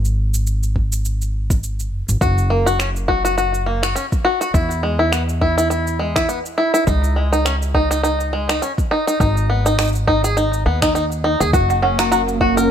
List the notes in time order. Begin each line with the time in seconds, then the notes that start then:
Already playing: G#1
0.05 cabasa
0.34 cabasa
0.47 cabasa
0.63 cabasa
0.76 kick
0.92 cabasa
1.05 cabasa
1.22 cabasa
1.50 kick, cabasa
1.63 cabasa
1.80 cabasa
1.92 F#1
2.09 G#1, cabasa
2.21 F#1 F#4, kick, cabasa
2.38 cabasa
2.50 A#3
2.66 F#4, cabasa
2.79 C#4, finger snap, cabasa
2.96 cabasa
3.08 F#4, kick
3.25 F#4, cabasa
3.38 F#4, cabasa
3.54 cabasa
3.66 A#3
3.83 F#4, finger snap, cabasa
3.96 C#4, cabasa
4.12 kick, cabasa
4.25 F#4
4.41 F#4, cabasa
4.54 E2 E4, kick, cabasa
4.71 cabasa
4.83 G#3
4.99 E4
5.12 B3, finger snap, cabasa
5.29 cabasa
5.41 E4, kick
5.58 E4, cabasa
5.70 E4, cabasa
5.87 cabasa
5.99 G#3
6.16 E4, finger snap, kick, cabasa
6.29 B3, cabasa
6.46 cabasa
6.58 E4
6.74 E4, cabasa
6.87 C#2 D#4, kick, cabasa
7.04 cabasa
7.16 G#3
7.33 D#4, cabasa
7.45 C#4, finger snap, cabasa
7.62 cabasa
7.75 D#4, kick
7.91 D#4, cabasa
8.03 D#4, cabasa
8.20 cabasa
8.33 G#3
8.49 D#4, finger snap, cabasa
8.62 C#4, cabasa
8.78 kick, cabasa
8.91 D#4
9.07 D#4, cabasa
9.20 G#1 D#4, kick, cabasa
9.37 cabasa
9.50 B3
9.66 D#4, cabasa
9.79 D#4, finger snap, cabasa
9.82 cabasa
9.84 cabasa
9.87 cabasa
9.89 cabasa
9.93 cabasa
9.95 cabasa
10.07 D#4, kick
10.24 G#4, cabasa
10.37 D#4, cabasa
10.53 cabasa
10.66 D#2 B3
10.82 D#4, finger snap, kick, cabasa
10.95 D#4, cabasa
11.12 cabasa
11.24 D#4
11.40 D#2 G#4, cabasa
11.53 F#1 A#3 F#4 F#5, kick, cabasa
11.70 F#5, cabasa
11.82 C#4 F#5
11.89 C#4
11.99 F#4 A#5, finger snap, cabasa
12.12 F#4 A#5, cabasa
12.17 F#4
12.28 cabasa
12.41 F#4, kick
12.57 A#4, cabasa